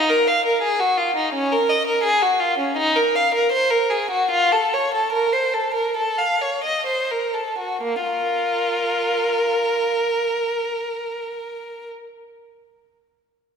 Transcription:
0.09 0.27 A#4 medium
0.28 0.45 F5 medium
0.46 0.63 A#4 medium
0.62 0.80 G#4 medium
0.80 0.98 F#4 medium
0.98 1.16 F4 medium
1.16 1.34 D#4 medium
1.34 1.51 C#4 medium
1.52 1.69 A#4 medium
1.70 1.87 D#5 medium
1.87 2.05 A#4 medium
2.04 2.22 G#4 medium
2.22 2.40 F#4 medium
2.40 2.58 F4 medium
2.59 2.77 C#4 medium
2.77 2.95 D#4 medium
2.96 3.15 A#4 medium
3.15 3.34 F5 medium
3.35 3.53 A#4 medium
3.52 3.71 C5 medium
3.71 3.91 A#4 medium
3.90 4.11 G#4 medium
4.11 4.31 F#4 medium
4.31 4.52 F4 medium
4.52 4.73 A4 medium
4.73 4.94 C#5 medium
4.94 5.14 A4 medium
5.12 5.33 A#4 medium
5.33 5.54 C5 medium
5.54 5.75 A4 medium
5.74 5.96 A#4 soft
5.97 6.18 A4 medium
6.18 6.41 F5 soft
6.41 6.64 C#5 soft
6.64 6.86 D#5 medium
6.86 7.09 C5 soft
7.11 7.35 A#4 soft
7.34 7.58 A4 soft
7.58 7.82 F#4 soft
7.82 8.03 A#3 medium
8.03 9.86 F4 soft
8.03 11.87 A#4 medium

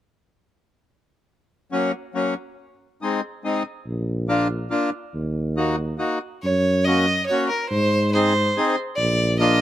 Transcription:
1.72 1.92 F#3 medium
1.72 1.92 A#3 soft
1.72 1.92 C#4 medium
2.15 2.34 F#3 soft
2.15 2.34 A#3 soft
2.15 2.35 C#4 medium
3.02 3.21 G#3 medium
3.02 3.21 C4 medium
3.02 3.21 D#4 medium
3.44 3.63 G#3 medium
3.44 3.63 C4 soft
3.44 3.63 D#4 medium
3.86 4.69 A#1 medium
4.29 4.48 A#3 medium
4.29 4.48 D4 medium
4.29 4.48 F4 medium
4.71 4.90 A#3 medium
4.71 4.90 D4 medium
4.71 4.90 F4 medium
5.14 5.98 D#2 medium
5.57 5.76 A#3 medium
5.57 5.76 D#4 soft
5.57 5.76 F#4 medium
5.98 6.19 A#3 soft
5.98 6.19 D#4 soft
5.98 6.19 F#4 soft
6.43 7.27 F#2 medium
6.43 6.87 C#5 medium
6.85 7.06 A#3 medium
6.85 7.06 C#4 soft
6.85 7.06 F#4 medium
6.85 7.26 D#5 medium
7.26 7.47 C#5 medium
7.30 7.49 A#3 medium
7.30 7.49 C#4 soft
7.30 7.49 F#4 medium
7.49 7.69 A#4 medium
7.69 8.54 G#2 medium
7.69 8.10 C5 medium
8.12 8.33 C4 medium
8.12 8.33 D#4 soft
8.12 8.33 G#4 medium
8.12 8.72 C5 medium
8.57 8.76 C4 medium
8.57 8.76 D#4 soft
8.57 8.76 G#4 medium
8.96 9.61 A#1 medium
8.96 9.36 D5 medium
9.39 9.59 A#3 medium
9.39 9.59 D4 medium
9.39 9.59 F4 medium
9.39 9.61 D#5 medium

